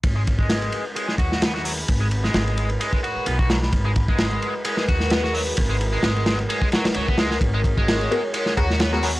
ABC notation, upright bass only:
X:1
M:4/4
L:1/8
Q:"Swing 16ths" 1/4=130
K:G#m
V:1 name="Upright bass" clef=bass
G,,,3 z2 D,,3 | G,,,2 G,,,2 z2 B,,,2 | G,,,3 z2 D,,3 | G,,,2 G,,,2 z2 C,,2 |
G,,,3 z2 D,,3 |]